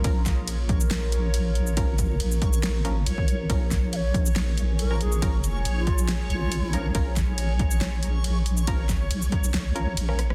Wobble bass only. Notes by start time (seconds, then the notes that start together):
0.04 A#1
0.91 A#1
1.81 A1
2.07 G#1
2.20 A#1
2.80 A1
3.06 A#1
3.50 A#1
4.36 A#1
5.65 A#1
6.30 A#1
6.95 A#1
7.81 A#1
8.71 A1
8.97 G#1
9.11 B1
9.97 A#1